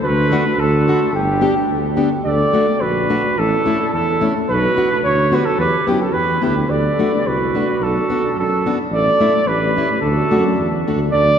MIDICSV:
0, 0, Header, 1, 5, 480
1, 0, Start_track
1, 0, Key_signature, 2, "major"
1, 0, Tempo, 556070
1, 12, Time_signature, 2, 2, 24, 8
1, 9829, End_track
2, 0, Start_track
2, 0, Title_t, "Flugelhorn"
2, 0, Program_c, 0, 56
2, 34, Note_on_c, 0, 71, 94
2, 516, Note_on_c, 0, 69, 90
2, 529, Note_off_c, 0, 71, 0
2, 982, Note_off_c, 0, 69, 0
2, 992, Note_on_c, 0, 67, 78
2, 1679, Note_off_c, 0, 67, 0
2, 1946, Note_on_c, 0, 74, 99
2, 2424, Note_on_c, 0, 71, 88
2, 2436, Note_off_c, 0, 74, 0
2, 2922, Note_on_c, 0, 69, 99
2, 2935, Note_off_c, 0, 71, 0
2, 3392, Note_off_c, 0, 69, 0
2, 3401, Note_on_c, 0, 69, 90
2, 3731, Note_off_c, 0, 69, 0
2, 3880, Note_on_c, 0, 71, 102
2, 4310, Note_off_c, 0, 71, 0
2, 4353, Note_on_c, 0, 73, 95
2, 4611, Note_on_c, 0, 71, 78
2, 4623, Note_off_c, 0, 73, 0
2, 4707, Note_on_c, 0, 69, 86
2, 4720, Note_off_c, 0, 71, 0
2, 4813, Note_off_c, 0, 69, 0
2, 4833, Note_on_c, 0, 71, 97
2, 5058, Note_off_c, 0, 71, 0
2, 5074, Note_on_c, 0, 67, 69
2, 5193, Note_on_c, 0, 69, 73
2, 5206, Note_off_c, 0, 67, 0
2, 5289, Note_on_c, 0, 71, 96
2, 5302, Note_off_c, 0, 69, 0
2, 5545, Note_off_c, 0, 71, 0
2, 5562, Note_on_c, 0, 71, 74
2, 5781, Note_on_c, 0, 74, 88
2, 5794, Note_off_c, 0, 71, 0
2, 6276, Note_on_c, 0, 71, 83
2, 6289, Note_off_c, 0, 74, 0
2, 6755, Note_on_c, 0, 69, 86
2, 6768, Note_off_c, 0, 71, 0
2, 7227, Note_off_c, 0, 69, 0
2, 7240, Note_on_c, 0, 69, 81
2, 7570, Note_off_c, 0, 69, 0
2, 7718, Note_on_c, 0, 74, 104
2, 8177, Note_on_c, 0, 71, 89
2, 8190, Note_off_c, 0, 74, 0
2, 8640, Note_off_c, 0, 71, 0
2, 8645, Note_on_c, 0, 69, 85
2, 9347, Note_off_c, 0, 69, 0
2, 9604, Note_on_c, 0, 74, 123
2, 9829, Note_off_c, 0, 74, 0
2, 9829, End_track
3, 0, Start_track
3, 0, Title_t, "Clarinet"
3, 0, Program_c, 1, 71
3, 24, Note_on_c, 1, 66, 81
3, 528, Note_off_c, 1, 66, 0
3, 528, Note_on_c, 1, 66, 69
3, 988, Note_off_c, 1, 66, 0
3, 1005, Note_on_c, 1, 62, 75
3, 1686, Note_off_c, 1, 62, 0
3, 1952, Note_on_c, 1, 69, 88
3, 2434, Note_on_c, 1, 66, 72
3, 2447, Note_off_c, 1, 69, 0
3, 2918, Note_on_c, 1, 64, 76
3, 2931, Note_off_c, 1, 66, 0
3, 3390, Note_off_c, 1, 64, 0
3, 3395, Note_on_c, 1, 64, 65
3, 3728, Note_off_c, 1, 64, 0
3, 3883, Note_on_c, 1, 66, 81
3, 4311, Note_off_c, 1, 66, 0
3, 4359, Note_on_c, 1, 66, 68
3, 4624, Note_on_c, 1, 67, 60
3, 4637, Note_off_c, 1, 66, 0
3, 4727, Note_on_c, 1, 66, 65
3, 4740, Note_off_c, 1, 67, 0
3, 4823, Note_off_c, 1, 66, 0
3, 4842, Note_on_c, 1, 67, 79
3, 5063, Note_off_c, 1, 67, 0
3, 5100, Note_on_c, 1, 64, 60
3, 5209, Note_on_c, 1, 66, 57
3, 5222, Note_off_c, 1, 64, 0
3, 5317, Note_on_c, 1, 67, 64
3, 5330, Note_off_c, 1, 66, 0
3, 5558, Note_off_c, 1, 67, 0
3, 5576, Note_on_c, 1, 67, 60
3, 5794, Note_on_c, 1, 69, 77
3, 5807, Note_off_c, 1, 67, 0
3, 6288, Note_on_c, 1, 66, 73
3, 6301, Note_off_c, 1, 69, 0
3, 6768, Note_off_c, 1, 66, 0
3, 6768, Note_on_c, 1, 66, 86
3, 7234, Note_off_c, 1, 66, 0
3, 7246, Note_on_c, 1, 66, 62
3, 7573, Note_off_c, 1, 66, 0
3, 7728, Note_on_c, 1, 69, 78
3, 8196, Note_on_c, 1, 67, 65
3, 8209, Note_off_c, 1, 69, 0
3, 8661, Note_off_c, 1, 67, 0
3, 8672, Note_on_c, 1, 66, 73
3, 9360, Note_off_c, 1, 66, 0
3, 9829, End_track
4, 0, Start_track
4, 0, Title_t, "Steel-string acoustic guitar"
4, 0, Program_c, 2, 25
4, 272, Note_on_c, 2, 57, 61
4, 279, Note_on_c, 2, 62, 56
4, 283, Note_on_c, 2, 66, 69
4, 370, Note_off_c, 2, 57, 0
4, 374, Note_off_c, 2, 62, 0
4, 375, Note_off_c, 2, 66, 0
4, 757, Note_on_c, 2, 57, 60
4, 760, Note_on_c, 2, 62, 56
4, 768, Note_on_c, 2, 66, 59
4, 852, Note_off_c, 2, 57, 0
4, 854, Note_off_c, 2, 62, 0
4, 858, Note_off_c, 2, 66, 0
4, 1219, Note_on_c, 2, 59, 54
4, 1223, Note_on_c, 2, 62, 59
4, 1228, Note_on_c, 2, 67, 61
4, 1322, Note_off_c, 2, 59, 0
4, 1323, Note_off_c, 2, 62, 0
4, 1326, Note_off_c, 2, 67, 0
4, 1700, Note_on_c, 2, 59, 61
4, 1703, Note_on_c, 2, 62, 61
4, 1704, Note_on_c, 2, 67, 75
4, 1804, Note_off_c, 2, 59, 0
4, 1804, Note_off_c, 2, 62, 0
4, 1806, Note_off_c, 2, 67, 0
4, 2188, Note_on_c, 2, 57, 55
4, 2194, Note_on_c, 2, 62, 50
4, 2199, Note_on_c, 2, 66, 60
4, 2291, Note_off_c, 2, 57, 0
4, 2294, Note_off_c, 2, 62, 0
4, 2296, Note_off_c, 2, 66, 0
4, 2674, Note_on_c, 2, 57, 57
4, 2679, Note_on_c, 2, 62, 50
4, 2680, Note_on_c, 2, 66, 61
4, 2775, Note_off_c, 2, 57, 0
4, 2776, Note_off_c, 2, 62, 0
4, 2778, Note_off_c, 2, 66, 0
4, 3157, Note_on_c, 2, 57, 66
4, 3164, Note_on_c, 2, 61, 48
4, 3168, Note_on_c, 2, 64, 62
4, 3258, Note_off_c, 2, 57, 0
4, 3262, Note_off_c, 2, 61, 0
4, 3262, Note_off_c, 2, 64, 0
4, 3635, Note_on_c, 2, 57, 58
4, 3642, Note_on_c, 2, 64, 65
4, 3643, Note_on_c, 2, 61, 52
4, 3736, Note_off_c, 2, 57, 0
4, 3738, Note_off_c, 2, 61, 0
4, 3739, Note_off_c, 2, 64, 0
4, 4115, Note_on_c, 2, 59, 58
4, 4119, Note_on_c, 2, 62, 61
4, 4125, Note_on_c, 2, 66, 72
4, 4212, Note_off_c, 2, 59, 0
4, 4213, Note_off_c, 2, 62, 0
4, 4217, Note_off_c, 2, 66, 0
4, 4589, Note_on_c, 2, 59, 53
4, 4594, Note_on_c, 2, 62, 49
4, 4598, Note_on_c, 2, 66, 59
4, 4687, Note_off_c, 2, 59, 0
4, 4689, Note_off_c, 2, 62, 0
4, 4691, Note_off_c, 2, 66, 0
4, 5069, Note_on_c, 2, 59, 60
4, 5072, Note_on_c, 2, 64, 54
4, 5079, Note_on_c, 2, 67, 64
4, 5167, Note_off_c, 2, 59, 0
4, 5168, Note_off_c, 2, 64, 0
4, 5172, Note_off_c, 2, 67, 0
4, 5540, Note_on_c, 2, 59, 60
4, 5549, Note_on_c, 2, 64, 47
4, 5554, Note_on_c, 2, 67, 55
4, 5644, Note_off_c, 2, 59, 0
4, 5649, Note_off_c, 2, 64, 0
4, 5650, Note_off_c, 2, 67, 0
4, 6035, Note_on_c, 2, 57, 55
4, 6039, Note_on_c, 2, 62, 51
4, 6045, Note_on_c, 2, 66, 56
4, 6135, Note_off_c, 2, 57, 0
4, 6136, Note_off_c, 2, 62, 0
4, 6140, Note_off_c, 2, 66, 0
4, 6515, Note_on_c, 2, 57, 50
4, 6522, Note_on_c, 2, 62, 53
4, 6530, Note_on_c, 2, 66, 54
4, 6616, Note_off_c, 2, 57, 0
4, 6620, Note_off_c, 2, 62, 0
4, 6624, Note_off_c, 2, 66, 0
4, 6992, Note_on_c, 2, 59, 58
4, 6997, Note_on_c, 2, 62, 51
4, 7005, Note_on_c, 2, 66, 64
4, 7094, Note_off_c, 2, 59, 0
4, 7097, Note_off_c, 2, 62, 0
4, 7101, Note_off_c, 2, 66, 0
4, 7477, Note_on_c, 2, 59, 58
4, 7482, Note_on_c, 2, 62, 54
4, 7484, Note_on_c, 2, 66, 60
4, 7576, Note_off_c, 2, 59, 0
4, 7576, Note_off_c, 2, 62, 0
4, 7578, Note_off_c, 2, 66, 0
4, 7946, Note_on_c, 2, 57, 71
4, 7951, Note_on_c, 2, 62, 55
4, 7954, Note_on_c, 2, 64, 68
4, 8048, Note_off_c, 2, 57, 0
4, 8050, Note_off_c, 2, 62, 0
4, 8051, Note_off_c, 2, 64, 0
4, 8431, Note_on_c, 2, 57, 57
4, 8435, Note_on_c, 2, 61, 55
4, 8444, Note_on_c, 2, 64, 68
4, 8528, Note_off_c, 2, 57, 0
4, 8530, Note_off_c, 2, 61, 0
4, 8535, Note_off_c, 2, 64, 0
4, 8901, Note_on_c, 2, 57, 61
4, 8907, Note_on_c, 2, 62, 52
4, 8909, Note_on_c, 2, 66, 62
4, 9004, Note_off_c, 2, 57, 0
4, 9005, Note_off_c, 2, 62, 0
4, 9007, Note_off_c, 2, 66, 0
4, 9389, Note_on_c, 2, 57, 64
4, 9390, Note_on_c, 2, 62, 55
4, 9394, Note_on_c, 2, 66, 62
4, 9488, Note_off_c, 2, 57, 0
4, 9488, Note_off_c, 2, 62, 0
4, 9490, Note_off_c, 2, 66, 0
4, 9829, End_track
5, 0, Start_track
5, 0, Title_t, "Tuba"
5, 0, Program_c, 3, 58
5, 19, Note_on_c, 3, 38, 89
5, 328, Note_off_c, 3, 38, 0
5, 489, Note_on_c, 3, 38, 84
5, 800, Note_off_c, 3, 38, 0
5, 962, Note_on_c, 3, 31, 82
5, 1275, Note_off_c, 3, 31, 0
5, 1448, Note_on_c, 3, 38, 76
5, 1762, Note_off_c, 3, 38, 0
5, 1941, Note_on_c, 3, 38, 83
5, 2105, Note_off_c, 3, 38, 0
5, 2425, Note_on_c, 3, 34, 69
5, 2736, Note_off_c, 3, 34, 0
5, 2902, Note_on_c, 3, 33, 87
5, 3068, Note_off_c, 3, 33, 0
5, 3395, Note_on_c, 3, 40, 65
5, 3700, Note_off_c, 3, 40, 0
5, 3871, Note_on_c, 3, 35, 90
5, 4030, Note_off_c, 3, 35, 0
5, 4343, Note_on_c, 3, 38, 78
5, 4648, Note_off_c, 3, 38, 0
5, 4814, Note_on_c, 3, 40, 81
5, 4977, Note_off_c, 3, 40, 0
5, 5064, Note_on_c, 3, 42, 75
5, 5266, Note_off_c, 3, 42, 0
5, 5282, Note_on_c, 3, 40, 69
5, 5515, Note_off_c, 3, 40, 0
5, 5541, Note_on_c, 3, 38, 72
5, 5747, Note_off_c, 3, 38, 0
5, 5773, Note_on_c, 3, 38, 77
5, 5940, Note_off_c, 3, 38, 0
5, 6251, Note_on_c, 3, 36, 64
5, 6567, Note_off_c, 3, 36, 0
5, 6731, Note_on_c, 3, 35, 84
5, 6899, Note_off_c, 3, 35, 0
5, 7209, Note_on_c, 3, 42, 62
5, 7522, Note_off_c, 3, 42, 0
5, 7684, Note_on_c, 3, 33, 84
5, 7852, Note_off_c, 3, 33, 0
5, 8165, Note_on_c, 3, 33, 77
5, 8477, Note_off_c, 3, 33, 0
5, 8645, Note_on_c, 3, 38, 92
5, 8812, Note_off_c, 3, 38, 0
5, 8912, Note_on_c, 3, 42, 77
5, 9110, Note_off_c, 3, 42, 0
5, 9137, Note_on_c, 3, 40, 58
5, 9363, Note_off_c, 3, 40, 0
5, 9392, Note_on_c, 3, 38, 74
5, 9591, Note_off_c, 3, 38, 0
5, 9611, Note_on_c, 3, 38, 83
5, 9776, Note_off_c, 3, 38, 0
5, 9829, End_track
0, 0, End_of_file